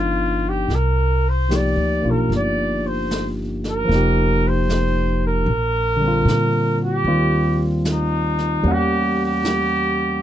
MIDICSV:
0, 0, Header, 1, 5, 480
1, 0, Start_track
1, 0, Tempo, 806452
1, 401, Time_signature, 4, 2, 24, 8
1, 2318, Tempo, 793651
1, 6145, End_track
2, 0, Start_track
2, 0, Title_t, "Trumpet"
2, 0, Program_c, 0, 56
2, 0, Note_on_c, 0, 65, 88
2, 291, Note_on_c, 0, 67, 73
2, 300, Note_off_c, 0, 65, 0
2, 443, Note_on_c, 0, 70, 77
2, 452, Note_off_c, 0, 67, 0
2, 768, Note_on_c, 0, 72, 84
2, 777, Note_off_c, 0, 70, 0
2, 926, Note_on_c, 0, 74, 87
2, 934, Note_off_c, 0, 72, 0
2, 1250, Note_on_c, 0, 70, 74
2, 1259, Note_off_c, 0, 74, 0
2, 1388, Note_off_c, 0, 70, 0
2, 1402, Note_on_c, 0, 74, 88
2, 1705, Note_on_c, 0, 72, 83
2, 1714, Note_off_c, 0, 74, 0
2, 1956, Note_off_c, 0, 72, 0
2, 2199, Note_on_c, 0, 70, 93
2, 2671, Note_on_c, 0, 72, 99
2, 2680, Note_off_c, 0, 70, 0
2, 3134, Note_off_c, 0, 72, 0
2, 3150, Note_on_c, 0, 70, 95
2, 4066, Note_off_c, 0, 70, 0
2, 4101, Note_on_c, 0, 67, 88
2, 4594, Note_off_c, 0, 67, 0
2, 4748, Note_on_c, 0, 63, 84
2, 5235, Note_on_c, 0, 67, 94
2, 5245, Note_off_c, 0, 63, 0
2, 5536, Note_off_c, 0, 67, 0
2, 5555, Note_on_c, 0, 67, 90
2, 6145, Note_off_c, 0, 67, 0
2, 6145, End_track
3, 0, Start_track
3, 0, Title_t, "Tine electric piano"
3, 0, Program_c, 1, 4
3, 0, Control_c, 1, 64, 127
3, 0, Note_on_c, 1, 53, 37
3, 0, Note_on_c, 1, 59, 38
3, 0, Note_on_c, 1, 62, 39
3, 0, Note_on_c, 1, 63, 49
3, 397, Note_off_c, 1, 53, 0
3, 403, Note_off_c, 1, 59, 0
3, 408, Control_c, 1, 64, 0
3, 409, Note_off_c, 1, 62, 0
3, 414, Note_off_c, 1, 63, 0
3, 507, Control_c, 1, 64, 127
3, 887, Note_on_c, 1, 53, 43
3, 891, Note_on_c, 1, 58, 35
3, 896, Note_on_c, 1, 63, 37
3, 896, Note_on_c, 1, 67, 50
3, 1195, Note_off_c, 1, 58, 0
3, 1202, Note_on_c, 1, 58, 40
3, 1210, Note_on_c, 1, 62, 35
3, 1221, Note_on_c, 1, 65, 47
3, 2282, Note_off_c, 1, 53, 0
3, 2289, Note_on_c, 1, 53, 56
3, 2303, Note_off_c, 1, 58, 0
3, 2310, Note_on_c, 1, 58, 48
3, 2320, Note_off_c, 1, 62, 0
3, 2324, Note_off_c, 1, 63, 0
3, 2324, Note_off_c, 1, 67, 0
3, 2326, Note_off_c, 1, 65, 0
3, 2326, Control_c, 1, 64, 0
3, 2333, Note_on_c, 1, 63, 52
3, 2355, Note_on_c, 1, 67, 57
3, 2426, Control_c, 1, 64, 127
3, 3263, Note_off_c, 1, 53, 0
3, 3274, Note_off_c, 1, 58, 0
3, 3285, Note_off_c, 1, 63, 0
3, 3285, Control_c, 1, 64, 0
3, 3296, Note_off_c, 1, 67, 0
3, 3383, Control_c, 1, 64, 127
3, 3570, Note_on_c, 1, 50, 55
3, 3594, Note_on_c, 1, 55, 43
3, 3617, Note_on_c, 1, 60, 46
3, 3638, Note_on_c, 1, 65, 58
3, 4221, Note_off_c, 1, 50, 0
3, 4230, Note_off_c, 1, 55, 0
3, 4235, Note_off_c, 1, 60, 0
3, 4237, Note_on_c, 1, 55, 48
3, 4238, Note_off_c, 1, 65, 0
3, 4238, Note_on_c, 1, 51, 52
3, 4241, Control_c, 1, 64, 0
3, 4242, Note_on_c, 1, 60, 47
3, 4246, Note_on_c, 1, 65, 60
3, 4357, Control_c, 1, 64, 127
3, 5177, Note_off_c, 1, 55, 0
3, 5184, Note_on_c, 1, 55, 57
3, 5191, Note_on_c, 1, 58, 48
3, 5196, Note_off_c, 1, 51, 0
3, 5198, Note_off_c, 1, 60, 0
3, 5200, Note_off_c, 1, 65, 0
3, 5201, Control_c, 1, 64, 0
3, 5203, Note_on_c, 1, 61, 52
3, 5212, Note_on_c, 1, 78, 58
3, 5289, Control_c, 1, 64, 127
3, 6145, Note_off_c, 1, 55, 0
3, 6145, Note_off_c, 1, 58, 0
3, 6145, Note_off_c, 1, 61, 0
3, 6145, Note_off_c, 1, 78, 0
3, 6145, End_track
4, 0, Start_track
4, 0, Title_t, "Upright bass"
4, 0, Program_c, 2, 32
4, 0, Note_on_c, 2, 31, 67
4, 380, Note_off_c, 2, 31, 0
4, 408, Note_on_c, 2, 36, 63
4, 1025, Note_off_c, 2, 36, 0
4, 1048, Note_on_c, 2, 38, 53
4, 1196, Note_off_c, 2, 38, 0
4, 1213, Note_on_c, 2, 35, 54
4, 1358, Note_off_c, 2, 35, 0
4, 1368, Note_on_c, 2, 31, 65
4, 2295, Note_off_c, 2, 31, 0
4, 2316, Note_on_c, 2, 29, 70
4, 3252, Note_off_c, 2, 29, 0
4, 3266, Note_on_c, 2, 34, 76
4, 3725, Note_off_c, 2, 34, 0
4, 3742, Note_on_c, 2, 46, 70
4, 4203, Note_off_c, 2, 46, 0
4, 4223, Note_on_c, 2, 39, 72
4, 5165, Note_off_c, 2, 39, 0
4, 5186, Note_on_c, 2, 40, 74
4, 6129, Note_off_c, 2, 40, 0
4, 6145, End_track
5, 0, Start_track
5, 0, Title_t, "Drums"
5, 416, Note_on_c, 9, 25, 33
5, 416, Note_on_c, 9, 38, 28
5, 475, Note_off_c, 9, 38, 0
5, 899, Note_on_c, 9, 38, 41
5, 899, Note_on_c, 9, 44, 53
5, 959, Note_off_c, 9, 38, 0
5, 959, Note_off_c, 9, 44, 0
5, 1380, Note_off_c, 9, 25, 0
5, 1380, Note_on_c, 9, 25, 34
5, 1380, Note_on_c, 9, 38, 29
5, 1440, Note_off_c, 9, 38, 0
5, 1851, Note_on_c, 9, 38, 40
5, 1851, Note_on_c, 9, 44, 49
5, 1911, Note_off_c, 9, 38, 0
5, 1911, Note_off_c, 9, 44, 0
5, 2167, Note_on_c, 9, 38, 26
5, 2227, Note_off_c, 9, 38, 0
5, 2330, Note_off_c, 9, 25, 0
5, 2330, Note_on_c, 9, 25, 32
5, 2330, Note_on_c, 9, 38, 28
5, 2390, Note_off_c, 9, 38, 0
5, 2802, Note_on_c, 9, 38, 42
5, 2802, Note_on_c, 9, 44, 44
5, 2863, Note_off_c, 9, 38, 0
5, 2863, Note_off_c, 9, 44, 0
5, 3282, Note_off_c, 9, 25, 0
5, 3282, Note_on_c, 9, 25, 41
5, 3763, Note_on_c, 9, 38, 43
5, 3763, Note_on_c, 9, 44, 45
5, 3823, Note_off_c, 9, 38, 0
5, 3823, Note_off_c, 9, 44, 0
5, 4235, Note_off_c, 9, 25, 0
5, 4235, Note_on_c, 9, 25, 38
5, 4711, Note_on_c, 9, 38, 43
5, 4711, Note_on_c, 9, 44, 51
5, 4772, Note_off_c, 9, 38, 0
5, 4772, Note_off_c, 9, 44, 0
5, 5034, Note_on_c, 9, 38, 23
5, 5094, Note_off_c, 9, 38, 0
5, 5193, Note_off_c, 9, 25, 0
5, 5193, Note_on_c, 9, 25, 43
5, 5676, Note_on_c, 9, 38, 44
5, 5676, Note_on_c, 9, 44, 54
5, 5737, Note_off_c, 9, 38, 0
5, 5737, Note_off_c, 9, 44, 0
5, 6145, Note_off_c, 9, 25, 0
5, 6145, End_track
0, 0, End_of_file